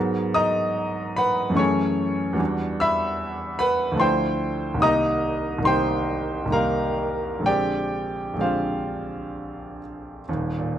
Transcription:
grand piano
Already playing: G#2 F#3 G#3 B3 A#4
0.34 D#5 A#5 D#6
1.16 B4 F#5 B5
1.50 F#2 E3 A3
1.55 C#4 G#4 C#5 G#5 C#6
2.33 E2 E3 G3
2.37 D4 F#4
2.80 E5 B5 E6
3.59 B4 F#5 B5
3.92 D2 F3 A3
3.98 D4 E4 C5 G5 C6
4.74 C2 D#3 A#3
4.80 D#4 G4 D#5 A#5 D#6
5.58 C2 D#3 A#3
5.64 D#4 G4 C5 G5 C6
6.46 C2 D#3 A#3
6.51 D#4 G4 A#4 F5 A#5
7.39 A#1 D3 G#3
7.44 C4 G4 D5 G5
8.34 A#1 D3 G#3
8.39 C4 F4 G4 C5 F5
10.29 D#1 D#2
10.58 A#2

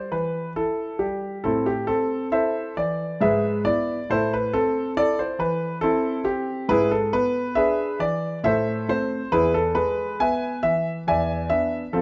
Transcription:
grand piano
Already playing: G3 C5
0.12 E3 B4
0.56 E4 A4
0.99 G3 G4
1.44 A2 C4 E4 A4
1.66 G4
1.87 C4 A4
2.32 E4 A4 C5 E5
2.77 E3 D5
3.21 G#2 G#4 B4 E5
3.65 B3 E4 D5
4.10 A2 E4 A4 C5
4.33 B4
4.53 C4 A4
4.97 E4 A4 D5
5.19 C5
5.39 E3 B4
5.81 C4 E4 A4
6.24 C4 G4
6.69 G#2 E4 G#4 B4
6.91 A4
7.13 B3 B4
7.55 D4 G#4 B4 E5
7.99 E3 D5
8.44 A2 A4 C5 E5
8.89 A3 C4 C5
9.32 E2 E4 G#4 B4
9.54 A4
9.75 G#3 B4
10.20 B3 B4 E5 G#5
10.63 E3 E5
11.07 E2 D5 E5 G#5
11.50 B3 D4 E5
11.93 F2 C4 F4 A4

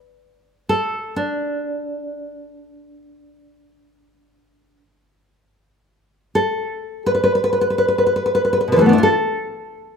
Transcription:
nylon-string guitar
Already playing: B4
0.69 A4
1.16 D4
6.35 A4
7.06 B4
7.15 B4
7.24 B4
7.35 B4
7.44 B4
7.53 B4
7.61 B4
7.70 B4
7.78 B4
7.88 B4
7.98 B4
8.07 B4
8.16 B4
8.26 B4
8.35 B4
8.45 B4
8.53 B4
8.61 B4
8.68 B2
8.72 D3 B4
8.76 E3 F3 B4
8.81 A3
8.86 B3 D4
8.93 E4
8.98 F4
9.03 A4

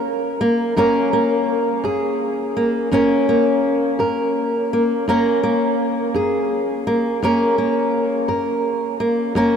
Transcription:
steel-string acoustic guitar
Already playing: F#2 A#3 C#4 A#4
0.41 A#3
0.76 F#2 A#3 C#4 A#4
1.13 A#3
1.84 F#2 G#4
2.57 A#3
2.91 F#2 A#3 C#4 A#4
3.29 A#3
3.99 F#2 A#4
4.73 A#3
5.08 F#2 A#3 C#4 A#4
5.43 A#3
6.14 F#2 G#4
6.87 A#3
7.22 F#2 A#3 C#4 A#4
7.58 A#3
8.28 F#2 A#4
9.00 A#3
9.35 F#2 A#3 C#4 A#4

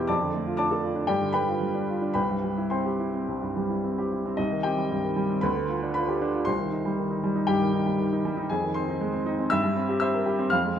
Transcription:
grand piano
Already playing: E2 B2 B3 E4 G4 C5 G5 C6 E6 G6
0.08 F2 D5 A5 D6
0.22 D3
0.34 A3
0.46 F4
0.57 D4 D5 A5 D6
0.71 A4
0.84 F4
0.96 D4
1.07 G2 G4 D5 G5
1.21 D3
1.32 G3 B4 G5 B5
1.47 F4
1.61 G3
1.74 D4
1.88 F4
2.02 D4
2.14 C2 B4 G5 B5
2.29 G2
2.44 G3
2.58 E4
2.70 C4 C5 G5 C6
2.86 G4
3.00 E4
3.14 C4
3.28 C2
3.42 G2
3.56 G3
3.70 E4
3.84 C4
3.98 G4
4.12 E4
4.26 C4
4.37 C2 D#4 D#5
4.52 D#3
4.63 C4 G4 G5
4.77 G3
4.91 G2
5.03 D#3
5.16 G3
5.30 C4
5.41 D2 B4 B5
5.56 D3
5.69 F4
5.83 D4
5.94 F4 B4 B5
6.08 G4
6.22 D4
6.34 F4
6.45 C2 C5 C6
6.59 D#3
6.72 D#4
6.85 G3
6.98 D#3
7.11 D#4
7.24 G3
7.36 D#4
7.47 G2 G4 G5
7.61 D#3
7.74 D#4
7.86 G3
7.99 D#3
8.13 D#4
8.25 G3
8.37 D#4
8.49 F2 G#4 G#5
8.63 D#3
8.74 C4 C5 C6
8.88 D#4
9.01 G#3
9.13 C4
9.26 D#4
9.39 C4
9.50 G2 E5 E6
9.64 G3
9.77 C4
9.89 G4
10.00 C5 E5 E6
10.14 A#4
10.26 G4
10.39 C4
10.50 F2 F5 F6
10.65 G#3

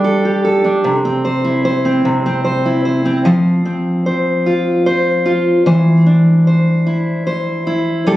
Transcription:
steel-string acoustic guitar
Already playing: G3 D4 G4
0.04 A4
0.25 G4
0.45 A4
0.64 D4
0.84 C3
1.05 C4
1.25 C5
1.44 E4
1.65 C5
1.85 C4
2.05 C3
2.26 C4
2.45 C5
2.66 E4
2.85 C5
3.05 C4
3.25 F3 C5
3.65 C4
4.06 C5
4.46 F4
4.86 C5
5.26 F4
5.66 E3 C5
6.06 D4
6.47 C5
6.87 E4
7.27 C5
7.67 E4
8.07 G3 A4

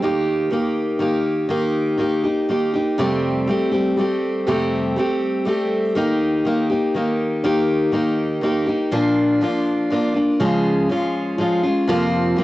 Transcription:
steel-string acoustic guitar
0.02 D#3 A#3 D#4 G4
0.50 D#3 A#3 D#4 G4
0.99 D#3 A#3 D#4 G4
1.49 D#3 A#3 D#4 G4
1.98 D#3 A#3 D#4 G4
2.24 A#3 D#4 G4
2.49 D#3 A#3 D#4 G4
2.74 A#3 D#4 G4
2.98 F2 C3 G3 A3 C4 G4
3.47 G3 A3 C4 G4
3.72 G3 A3 C4 G4
3.97 G3 A3 C4 G4
4.46 F2 C3 G3 A3 C4 G4
4.96 G3 A3 C4 G4
5.45 G3 A3 C4 G4
5.95 D#3 A#3 D#4 G4
6.45 D#3 A#3 D#4 G4
6.70 A#3 D#4 G4
6.95 D#3 A#3 D#4 G4
7.44 D#3 A#3 D#4 G4
7.92 D#3 A#3 D#4 G4
8.41 D#3 A#3 D#4 G4
8.66 A#3 D#4 G4
8.91 A#2 F3 A#3 D4 F4
9.41 F3 A#3 D4 F4
9.90 F3 A#3 D4 F4
10.14 A#3 D4 F4
10.40 C#3 F3 G#3 C#4 F4
10.89 F3 G#3 C#4 F4
11.38 F3 G#3 C#4 F4
11.63 G#3 C#4 F4
11.88 F2 C3 F3 A#3 C4 F4
12.37 F3 A#3 C4 F4

